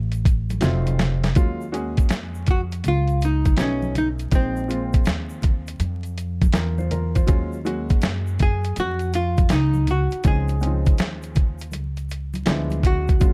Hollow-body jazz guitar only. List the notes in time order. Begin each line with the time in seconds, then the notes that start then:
Already playing: D#4
2.51 F#4
2.88 F4
3.25 D#4
3.60 C#4
3.98 D#4
4.35 C4
8.42 G#4
8.80 F#4
9.15 F4
9.53 D#4
9.91 F#4
10.27 G#4
12.87 F#4